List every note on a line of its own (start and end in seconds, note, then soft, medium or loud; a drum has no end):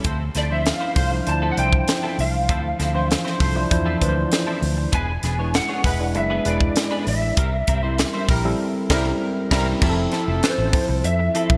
0.04 0.28 D2 loud
0.04 0.23 F3 medium
0.04 0.17 A3 medium
0.04 0.23 C4 medium
0.04 0.23 E4 medium
0.04 0.18 F4 medium
0.04 0.23 A4 medium
0.04 0.17 C5 medium
0.04 kick loud
0.04 closed hi-hat medium
0.35 0.70 D2 medium
0.35 0.49 F3 medium
0.35 0.49 C4 medium
0.35 0.50 E4 medium
0.35 0.50 A4 medium
0.35 0.52 D5 medium
0.35 snare soft
0.35 closed hi-hat medium
0.50 0.88 F3 medium
0.50 0.64 F3 medium
0.50 0.65 C4 soft
0.50 0.89 D4 medium
0.50 0.65 E4 medium
0.50 0.89 E4 medium
0.50 0.64 C5 medium
0.50 0.89 C5 medium
0.50 0.67 E5 medium
0.66 1.28 F5 medium
0.66 snare loud
0.66 closed hi-hat medium
0.80 0.95 F3 medium
0.80 0.95 C4 medium
0.80 0.95 E4 medium
0.80 0.96 C5 medium
0.96 1.19 C2 medium
0.96 1.15 A3 medium
0.96 1.15 F4 medium
0.96 1.15 C5 loud
0.96 muted clean electric guitar stroke soft
0.96 kick medium
0.96 open hi-hat medium
1.11 1.21 F3 medium
1.11 1.21 D4 medium
1.11 1.21 E4 medium
1.11 1.21 C5 medium
1.11 muted clean electric guitar stroke soft
1.26 1.50 D2 medium
1.26 1.46 F3 medium
1.26 1.46 D4 medium
1.26 1.46 E4 medium
1.26 1.46 C5 medium
1.26 1.50 A5 loud
1.26 muted clean electric guitar stroke soft
1.26 closed hi-hat medium
1.42 1.56 F3 medium
1.42 1.57 C4 medium
1.42 1.57 E4 medium
1.42 1.57 A4 medium
1.52 1.58 F#5 medium
1.57 1.81 C2 medium
1.57 1.64 E3 medium
1.57 1.71 F3 medium
1.57 1.71 C4 medium
1.57 2.33 D4 medium
1.57 2.34 E4 medium
1.57 1.72 E4 medium
1.57 1.71 A4 medium
1.57 2.34 C5 medium
1.57 2.21 G5 loud
1.57 closed hi-hat medium
1.64 2.36 F3 medium
1.73 muted clean electric guitar stroke soft
1.73 kick medium
1.88 muted clean electric guitar stroke soft
1.88 snare loud
1.88 closed hi-hat medium
2.03 2.17 F3 medium
2.03 2.18 C4 medium
2.03 2.18 E4 medium
2.03 2.18 A4 medium
2.18 2.49 C2 medium
2.18 4.60 F5 medium
2.18 muted clean electric guitar stroke soft
2.18 open hi-hat medium
2.33 muted clean electric guitar stroke soft
2.49 2.72 D2 medium
2.49 2.67 F3 medium
2.49 2.62 A3 medium
2.49 2.67 C4 medium
2.49 2.67 E4 medium
2.49 2.62 F4 medium
2.49 2.67 A4 medium
2.49 2.62 C5 medium
2.49 kick loud
2.49 closed hi-hat medium
2.79 3.14 D2 medium
2.79 2.93 F3 medium
2.79 2.93 C4 medium
2.79 2.93 E4 medium
2.79 2.94 A4 medium
2.79 snare soft
2.79 closed hi-hat medium
2.94 3.33 E3 medium
2.94 3.32 F3 medium
2.94 3.08 F3 medium
2.94 3.09 C4 medium
2.94 3.33 D4 medium
2.94 3.09 E4 medium
2.94 3.08 C5 medium
2.94 3.33 C5 medium
3.09 muted clean electric guitar stroke soft
3.09 snare loud
3.09 closed hi-hat medium
3.25 3.39 F3 medium
3.25 3.39 C4 medium
3.25 3.40 E4 medium
3.25 3.40 C5 medium
3.25 snare soft
3.40 3.64 C2 medium
3.40 3.59 A3 medium
3.40 3.59 F4 medium
3.40 3.59 C5 medium
3.40 muted clean electric guitar stroke soft
3.40 kick medium
3.40 open hi-hat medium
3.55 3.65 F3 medium
3.55 3.65 D4 medium
3.55 3.65 E4 medium
3.55 3.65 C5 loud
3.55 muted clean electric guitar stroke soft
3.70 3.94 E2 medium
3.70 3.90 F3 medium
3.70 3.90 D4 medium
3.70 3.90 E4 medium
3.70 3.90 C5 medium
3.70 muted clean electric guitar stroke soft
3.70 kick medium
3.70 closed hi-hat medium
3.86 4.00 F3 medium
3.86 4.00 C4 medium
3.86 4.00 E4 medium
3.86 4.01 A4 medium
4.01 4.25 D2 medium
4.01 4.78 E3 medium
4.01 4.15 F3 medium
4.01 4.77 F3 medium
4.01 4.15 C4 medium
4.01 4.77 D4 medium
4.01 4.15 E4 medium
4.01 4.15 A4 medium
4.01 4.08 B4 medium
4.01 kick medium
4.01 closed hi-hat medium
4.09 4.81 C5 loud
4.16 muted clean electric guitar stroke medium
4.32 muted clean electric guitar stroke soft
4.32 snare medium
4.32 closed hi-hat medium
4.47 4.61 F3 medium
4.47 4.61 C4 medium
4.47 4.61 E4 medium
4.47 4.61 A4 medium
4.62 4.85 D2 medium
4.62 muted clean electric guitar stroke soft
4.62 open hi-hat medium
4.77 muted clean electric guitar stroke soft
4.92 5.16 E1 loud
4.92 5.06 G#3 medium
4.92 5.11 B3 medium
4.92 5.11 D4 medium
4.92 5.06 E4 medium
4.92 5.11 G#4 medium
4.92 5.06 B4 medium
4.92 5.11 B4 loud
4.92 5.55 G#5 loud
4.92 kick loud
4.92 closed hi-hat medium
5.23 5.58 E1 loud
5.23 5.37 B3 medium
5.23 5.38 D4 medium
5.23 5.38 G#4 medium
5.23 5.38 B4 medium
5.23 snare soft
5.23 closed hi-hat medium
5.38 5.77 G#3 medium
5.38 5.53 B3 medium
5.38 5.77 D4 medium
5.38 5.53 D4 medium
5.38 5.77 E4 medium
5.38 5.53 G#4 medium
5.38 5.77 B4 medium
5.38 5.53 C#5 medium
5.54 6.18 F#5 loud
5.54 muted clean electric guitar stroke soft
5.54 snare loud
5.54 closed hi-hat medium
5.69 5.83 B3 medium
5.69 5.83 D4 medium
5.69 5.83 G#4 medium
5.69 5.85 C#5 medium
5.84 6.15 E1 medium
5.84 6.04 G#3 medium
5.84 6.04 E4 medium
5.84 6.04 B4 medium
5.84 muted clean electric guitar stroke soft
5.84 kick medium
5.84 open hi-hat medium
5.99 6.09 G#3 medium
5.99 6.09 D4 medium
5.99 6.09 E4 medium
5.99 6.10 B4 medium
5.99 muted clean electric guitar stroke soft
6.15 6.38 F#1 medium
6.15 6.34 G#3 medium
6.15 6.34 D4 medium
6.15 6.34 E4 medium
6.15 6.34 B4 medium
6.15 6.47 E5 medium
6.15 muted clean electric guitar stroke soft
6.15 closed hi-hat medium
6.30 6.44 B3 medium
6.30 6.44 D4 medium
6.30 6.45 G#4 medium
6.30 6.45 B4 medium
6.45 6.69 E1 medium
6.45 7.21 G#3 medium
6.45 6.59 B3 medium
6.45 7.22 D4 medium
6.45 6.60 D4 medium
6.45 7.22 E4 medium
6.45 6.60 G#4 medium
6.45 7.22 B4 medium
6.45 6.59 B4 medium
6.45 7.08 D5 medium
6.45 closed hi-hat medium
6.61 muted clean electric guitar stroke medium
6.61 kick medium
6.76 muted clean electric guitar stroke soft
6.76 snare loud
6.76 closed hi-hat medium
6.91 7.05 B3 medium
6.91 7.05 D4 medium
6.91 7.06 G#4 medium
6.91 7.06 B4 medium
7.06 7.30 A1 medium
7.06 8.87 E5 medium
7.06 muted clean electric guitar stroke soft
7.06 open hi-hat medium
7.22 muted clean electric guitar stroke soft
7.36 7.61 C2 loud
7.36 7.50 G3 medium
7.36 7.55 G3 medium
7.36 7.55 C4 medium
7.36 7.50 E4 medium
7.36 7.55 E4 medium
7.36 7.50 A#4 medium
7.36 7.56 A#4 medium
7.36 kick loud
7.36 closed hi-hat medium
7.67 8.03 C2 medium
7.67 7.82 G3 medium
7.67 7.82 C4 medium
7.67 7.82 E4 medium
7.67 7.82 A#4 medium
7.67 kick medium
7.67 closed hi-hat medium
7.83 8.21 G3 medium
7.83 7.97 G3 soft
7.83 8.21 C4 medium
7.83 7.97 C4 medium
7.83 7.97 E4 medium
7.83 8.21 E4 medium
7.83 8.22 A#4 medium
7.83 7.97 C5 medium
7.98 muted clean electric guitar stroke soft
7.98 snare loud
7.98 closed hi-hat medium
8.14 8.28 G3 medium
8.14 8.28 C4 medium
8.14 8.28 E4 medium
8.14 8.29 C5 medium
8.29 8.52 A#1 medium
8.29 8.48 G3 medium
8.29 8.48 E4 medium
8.29 8.48 A#4 medium
8.29 muted clean electric guitar stroke soft
8.29 kick medium
8.29 open hi-hat medium
8.44 8.54 G3 loud
8.44 8.54 C4 medium
8.44 8.54 E4 medium
8.44 8.54 A4 loud
8.44 muted clean electric guitar stroke medium
8.90 9.11 C2 loud
8.90 9.11 G3 medium
8.90 9.06 G3 loud
8.90 9.11 C4 loud
8.90 9.11 C4 medium
8.90 9.06 E4 loud
8.90 9.11 E4 loud
8.90 9.11 E4 medium
8.90 9.06 A#4 loud
8.90 9.11 A#4 medium
8.90 kick loud
8.90 snare loud
8.90 crash medium
9.51 9.72 C2 medium
9.51 9.72 G3 medium
9.51 9.67 G3 loud
9.51 9.73 G3 loud
9.51 9.72 C4 loud
9.51 9.67 E4 medium
9.51 9.72 E4 loud
9.51 9.72 A#4 loud
9.51 9.67 A#4 loud
9.51 9.73 A#4 loud
9.51 kick loud
9.51 snare loud
9.51 crash medium
9.82 10.05 F1 loud
9.82 10.00 F3 medium
9.82 10.39 F3 medium
9.82 11.32 F3 medium
9.82 9.96 C4 medium
9.82 10.39 C4 medium
9.82 11.32 E4 medium
9.82 9.96 E4 medium
9.82 10.39 E4 medium
9.82 9.89 G4 medium
9.82 11.32 A4 medium
9.82 9.96 A4 loud
9.82 kick loud
9.82 crash medium
9.89 10.43 A4 loud
9.97 muted clean electric guitar stroke soft
10.12 10.26 F3 medium
10.12 10.26 C4 medium
10.12 10.27 E4 medium
10.12 10.26 A4 medium
10.12 snare soft
10.12 closed hi-hat medium
10.28 10.39 F1 loud
10.28 10.41 F3 medium
10.28 10.42 C4 medium
10.28 10.42 E4 medium
10.28 10.42 A4 medium
10.43 11.07 C5 medium
10.43 muted clean electric guitar stroke soft
10.43 snare loud
10.43 closed hi-hat medium
10.58 10.70 A1 medium
10.58 muted clean electric guitar stroke medium
10.73 11.12 F3 medium
10.73 11.12 C4 medium
10.73 11.12 E4 medium
10.73 11.12 A4 medium
10.73 kick loud
10.73 open hi-hat medium
10.88 11.01 C2 medium
10.88 muted clean electric guitar stroke soft
11.04 11.28 F2 loud
11.04 11.57 E5 loud
11.04 muted clean electric guitar stroke soft
11.04 closed hi-hat medium
11.19 muted clean electric guitar stroke soft
11.34 11.57 F3 medium
11.34 11.53 F3 medium
11.34 11.57 C4 medium
11.34 11.50 C4 medium
11.34 11.57 E4 medium
11.34 11.49 E4 medium
11.34 11.57 A4 medium
11.34 11.49 A4 medium
11.34 closed hi-hat medium
11.50 11.57 A#1 medium
11.50 muted clean electric guitar stroke medium
11.50 kick medium